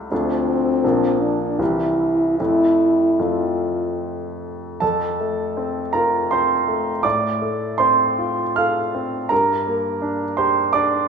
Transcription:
Already playing: C#2 G3 A3 E4
0.11 D2 F3 A3 C4 D4
0.84 A#1 F3 A#3 D4
1.21 D4
1.59 C2 E3 G3 C4 E4
2.38 F2 A3 C4 E4
3.20 F2 A3 C4 F4
4.80 F2 A4 A5
5.20 A3
5.57 C4
5.93 F4 A#4 A#5
6.31 C4 C5 C6
6.68 A3
7.03 A2 D5 D6
7.42 A3
7.78 C4 C5 C6
8.19 F4
8.56 A4 F5 F6
8.95 C4
9.29 G2 A#4 A#5
9.67 A#3
10.02 D4
10.37 G4 C5 C6
10.73 D4 D5 D6

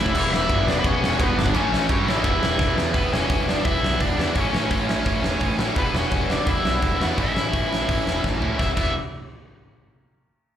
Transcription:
Already playing: A2 E3 A3 C#4 E4 E5
0.06 kick
0.14 E1 E2 B2 E3 G3 B3 E4, kick, crash
0.19 E3
0.31 E1 E4 E5, snare
0.50 G1, kick, ride
0.66 E1 D4 D5, snare
0.79 B4
0.84 E1 C#4 C#5, kick, ride
1.02 E1, snare
1.20 E1 B3 B4, kick, ride
1.36 G1 D4 D5, snare
1.46 kick
1.53 A1 A2 E3 A3 C#4 E4 C#5, kick, ride
1.72 A1, snare
1.89 G2 C#4 C#5, kick, ride
2.07 A1 E4 E5, snare
2.24 E1 E2 B2 E3 G3 B3 E4, kick, ride
2.42 E1, snare
2.59 E1, kick, snare
2.76 E2, snare
2.94 E1 E3 G3 B3 E4 B4, kick, open hi-hat
3.12 E1 C#4 C#5, snare
3.30 E1, kick, open hi-hat
3.48 D4 D5, snare
3.65 E1 E4 E5, kick, open hi-hat
3.82 B1, snare
3.99 E1 D4 D5, kick, open hi-hat
4.16 E2 E3 G3 B3 E4, snare
4.34 A1 A2 E3 A3 C#4 E4 C#5, kick, open hi-hat
4.53 A1, snare
4.71 A1 C#4 C#5, kick, open hi-hat
4.89 snare
5.05 A1, kick, open hi-hat
5.22 E1, snare
5.40 A1, kick, open hi-hat
5.58 A2 E3 A3 C#4 E4, snare
5.76 E1 E3 G3 B3 E4 B4, kick, open hi-hat
5.94 E1 C#4 C#5, snare
6.11 E1, kick, open hi-hat
6.30 D4 D5, snare
6.46 E1 E4 E5, kick, open hi-hat
6.65 B1, snare
6.82 E1, kick, open hi-hat
6.99 E2 E3 G3 B3 E4 F#4 F#5, snare
7.18 A1 A2 E3 A3 C#4 E4 E5, kick, open hi-hat
7.35 A1, snare
7.53 A1, kick, open hi-hat
7.73 snare
7.89 A1, kick, open hi-hat
8.06 E1, snare
8.24 A1, kick, snare
8.40 A2 E3 A3 C#4 E4, floor tom
8.59 E1 E3 G3 B3 E4 E5, kick, snare
8.76 E1 E3 G3 B3 E4 E5, kick, crash

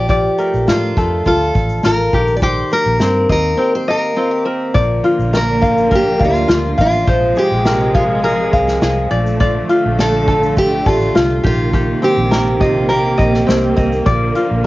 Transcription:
Already playing: A#1 G4
0.09 F3 D5, kick, shaker
0.38 A3 A#4, shaker
0.54 A#1, shaker
0.68 A2 D4 F4, snare, shaker
0.97 F2 A3 A4, kick, shaker
1.25 D2 F4 A4, kick, shaker
1.54 A1, kick, shaker
1.69 shaker
1.83 A1 F4 A#4, snare, shaker
2.13 A#1 D#3 G4, kick, shaker
2.27 shaker
2.37 D5
2.42 D#3 G4 C5, kick, shaker
2.71 A#3 A#4, shaker
2.86 A#1
3.00 G2 C4, snare, shaker
3.29 D#2 A#3 A#4 D#5, kick, shaker
3.57 C4 G4
3.75 C5
3.88 A#3 A#4 D#5
4.16 C4 F4
4.31 G4
4.45 C4 A#4
4.71 A#1 D3 F3 A#3 D5, kick, shaker
5.04 A#3 F4, shaker
5.19 A#1, shaker
5.33 D4 A#4, snare, shaker
5.61 F4 F5, kick, shaker
5.78 shaker
5.91 A#3 A#4, kick, shaker
5.95 G4
6.19 D2 D4 F5, kick, shaker
6.25 F4
6.35 shaker
6.48 D2 F4, snare, shaker
6.78 A1 D4 F4 F5, kick, shaker
6.93 shaker
7.06 A#1 C3 F3 G#3 C5, kick, shaker
7.36 G#3 G4 G#4, shaker
7.52 A#1
7.65 C4 A#4, snare, shaker
7.94 F4 G#4 F5, kick, shaker
8.24 G#3 G#4 A#4, shaker
8.53 C2 C4 F5, kick, shaker
8.68 snare, shaker
8.81 C2 G#4, snare, shaker
9.10 A#1 D3 F3 A3 D5, shaker
9.26 shaker
9.40 F3 D5, kick, shaker
9.69 A3 F4, shaker
9.86 A#1
9.99 D4 A4, snare, shaker
10.28 F4 A4, kick, shaker
10.43 shaker
10.56 A3 G4, kick, shaker
10.86 A1 D4 F4 A4, kick, shaker
11.01 shaker
11.15 C2 F4, snare, shaker
11.43 A#1 C3 D#3 A#3 F4 G4, kick, shaker
11.73 D#3 G4, kick, shaker
12.02 A#3 C4 G4, shaker
12.17 A#1
12.31 C4 A#4, snare, shaker
12.60 F4 G4 D#5, kick, shaker
12.89 A#3 G4 A#4, shaker
13.18 A#1 C4 D#5, kick, shaker
13.34 snare
13.47 C2 C4 G4, snare, shaker
13.76 C2 C4 D#5, kick, shaker
13.92 shaker
14.06 A#1 D3 F3 D5, kick, shaker
14.35 A#3 F4, shaker
14.51 A#1

